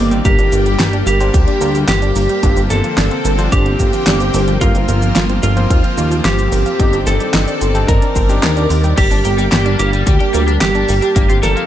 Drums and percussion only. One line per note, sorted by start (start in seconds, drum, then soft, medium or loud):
0.11 closed hi-hat soft
0.11 shaker soft
0.25 kick loud
0.25 closed hi-hat medium
0.25 shaker soft
0.39 closed hi-hat soft
0.39 shaker soft
0.52 closed hi-hat medium
0.52 shaker medium
0.66 closed hi-hat soft
0.66 shaker soft
0.80 snare loud
0.80 clap medium
0.80 closed hi-hat medium
0.80 shaker soft
0.93 closed hi-hat soft
1.07 closed hi-hat medium
1.07 shaker medium
1.21 closed hi-hat soft
1.21 shaker soft
1.34 kick loud
1.34 closed hi-hat medium
1.34 shaker soft
1.48 closed hi-hat soft
1.61 shaker medium
1.75 closed hi-hat soft
1.75 shaker soft
1.88 snare loud
1.88 clap medium
1.88 closed hi-hat medium
1.88 shaker soft
2.02 closed hi-hat soft
2.02 shaker soft
2.16 open hi-hat medium
2.16 shaker medium
2.29 closed hi-hat soft
2.29 shaker soft
2.43 kick loud
2.43 closed hi-hat medium
2.43 shaker soft
2.57 closed hi-hat soft
2.57 shaker soft
2.70 snare soft
2.70 closed hi-hat medium
2.70 shaker medium
2.84 closed hi-hat soft
2.84 shaker soft
2.98 snare loud
2.98 clap medium
2.98 closed hi-hat medium
2.98 shaker soft
3.11 closed hi-hat soft
3.25 closed hi-hat medium
3.25 shaker medium
3.39 closed hi-hat soft
3.39 shaker soft
3.52 kick loud
3.52 closed hi-hat medium
3.52 shaker soft
3.66 closed hi-hat soft
3.79 kick medium
3.79 shaker medium
3.93 closed hi-hat soft
3.93 shaker soft
4.07 snare loud
4.07 clap loud
4.07 closed hi-hat medium
4.07 shaker soft
4.20 closed hi-hat soft
4.20 shaker soft
4.34 open hi-hat medium
4.34 shaker medium
4.48 closed hi-hat soft
4.48 shaker soft
4.61 kick loud
4.61 closed hi-hat medium
4.61 shaker soft
4.75 closed hi-hat soft
4.75 shaker soft
4.89 closed hi-hat medium
4.89 shaker medium
5.02 closed hi-hat soft
5.02 shaker soft
5.16 snare loud
5.16 clap loud
5.16 closed hi-hat medium
5.16 shaker soft
5.29 closed hi-hat soft
5.43 closed hi-hat medium
5.43 shaker medium
5.57 closed hi-hat soft
5.57 shaker soft
5.70 kick loud
5.70 closed hi-hat medium
5.70 shaker soft
5.84 closed hi-hat soft
5.98 shaker medium
6.11 closed hi-hat soft
6.11 shaker soft
6.25 snare loud
6.25 clap loud
6.25 closed hi-hat medium
6.25 shaker soft
6.39 closed hi-hat soft
6.39 shaker soft
6.52 open hi-hat medium
6.52 shaker medium
6.66 closed hi-hat soft
6.66 shaker soft
6.79 kick loud
6.79 closed hi-hat medium
6.79 shaker soft
6.93 closed hi-hat soft
6.93 shaker soft
7.07 snare soft
7.07 closed hi-hat medium
7.07 shaker medium
7.20 closed hi-hat soft
7.20 shaker soft
7.34 snare loud
7.34 clap loud
7.34 closed hi-hat medium
7.34 shaker soft
7.48 closed hi-hat soft
7.48 shaker soft
7.61 closed hi-hat medium
7.61 shaker medium
7.75 closed hi-hat soft
7.75 shaker soft
7.89 kick loud
7.89 closed hi-hat loud
7.89 shaker soft
8.02 closed hi-hat soft
8.02 shaker soft
8.16 kick medium
8.16 shaker medium
8.30 closed hi-hat soft
8.30 shaker soft
8.43 snare loud
8.43 clap loud
8.43 closed hi-hat medium
8.43 shaker soft
8.57 closed hi-hat soft
8.57 shaker soft
8.70 open hi-hat medium
8.70 shaker medium
8.84 closed hi-hat soft
8.84 shaker soft
8.98 kick loud
8.98 closed hi-hat loud
8.98 crash medium
8.98 shaker soft
9.11 closed hi-hat soft
9.11 shaker soft
9.25 closed hi-hat medium
9.25 shaker medium
9.39 closed hi-hat soft
9.39 shaker soft
9.52 snare loud
9.52 clap loud
9.52 closed hi-hat loud
9.52 shaker soft
9.66 closed hi-hat soft
9.79 closed hi-hat medium
9.79 shaker medium
9.93 closed hi-hat soft
9.93 shaker soft
10.07 kick loud
10.07 closed hi-hat loud
10.07 shaker soft
10.20 closed hi-hat soft
10.34 shaker medium
10.48 closed hi-hat soft
10.48 shaker soft
10.61 snare loud
10.61 clap loud
10.61 closed hi-hat loud
10.61 shaker soft
10.75 closed hi-hat soft
10.75 shaker soft
10.89 open hi-hat medium
10.89 shaker medium
11.02 closed hi-hat soft
11.02 shaker soft
11.16 kick loud
11.16 closed hi-hat loud
11.16 shaker soft
11.30 closed hi-hat soft
11.30 shaker soft
11.43 snare soft
11.43 closed hi-hat medium
11.43 shaker medium
11.57 closed hi-hat soft
11.57 shaker soft